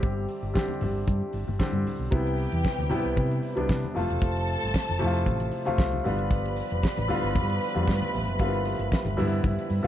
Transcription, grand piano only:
Already playing: D3 G3 C4 G4
0.54 D3 G3 C4 G4
1.59 D3 G3 C4 G4
2.11 C3 G3 B3 E4
2.90 C3 G3 B3 E4
3.55 C3 G3 B3 D4
3.95 C3 F3 A3 F4
4.99 C3 F3 A3 E4
5.07 F4
5.65 C3 F3 A3 F4
6.04 D3 G3 B3 F4
7.08 D3 G3 B3 F4
7.74 D3 G3 A3 F4
7.82 B3
8.39 D3 G3 A#3 F4
8.46 B3
9.17 D3 G3 B3 E4
9.83 D3 G3 B3

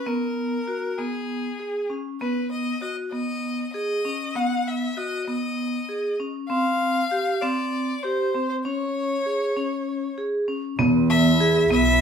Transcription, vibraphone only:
0.06 B3
0.68 F#4
0.98 B3
1.60 G#4
1.90 C#4
2.21 B3
2.82 F#4
3.13 B3
3.74 G#4
4.05 C#4
4.36 B3
4.97 F#4
5.28 B3
5.89 G#4
6.20 C#4
6.50 C4
7.11 G4
7.42 C4
8.04 G4
8.35 C4
8.65 C#4
9.26 G#4
9.57 C#4
10.18 G#4
10.48 C#4
10.79 B3
11.40 G#4
11.70 B3

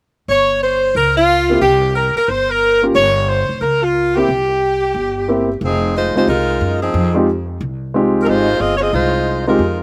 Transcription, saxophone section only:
0.30 C#5
0.63 C5
0.96 A#4
1.17 F4
1.61 G4
1.95 A#4
2.16 A#4
2.29 C5
2.50 A#4
2.95 C#5
3.28 C5
3.61 A#4
3.82 F4
4.16 G4
5.64 F3 C4 D#4 G#4
5.96 G#3 D#4 F4 C5
6.17 G#3 D#4 F4 C5
6.28 G#3 D#4 F4 A#4
6.82 F3 C4 D#4 G#4
8.23 A#4
8.28 G#3 D#4 F4 C5
8.59 C4 F4 G#4 D#5
8.77 C4 G#4 C#5 D#5
8.81 F4
8.92 G#3 D#4 F4 C5
9.47 G#3 D#4 F4 A#4

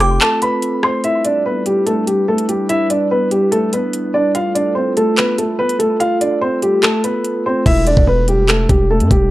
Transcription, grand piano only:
0.01 G4 G5
0.21 A4 A5
0.42 B4 B5
0.84 C5 C6
1.04 E4 E5
1.25 D4 D5
1.46 B3 B4
1.66 G3 G4
1.86 A3 A4
2.07 G3 G4
2.28 A3 A4
2.49 G3 G4
2.69 E4 E5
2.90 D4 D5
3.11 B3 B4
3.31 G3 G4
3.52 A3 A4
3.73 B3 B4
4.14 D4 D5
4.35 F4 F5
4.55 D4 D5
4.75 C4 C5
4.97 A3 A4
5.18 B3 B4
5.38 A3 A4
5.59 B3 B4
5.79 A3 A4
6.00 F4 F5
6.21 D4 D5
6.41 C4 C5
6.62 G3 G4
6.83 A3 A4
7.04 B3 B4
7.46 C4 C5
7.66 E4 E5
7.87 D4 D5
8.08 B3 B4
8.28 G3 G4
8.48 A3 A4
8.69 G3 G4
8.90 A3 A4
9.11 G3 G4

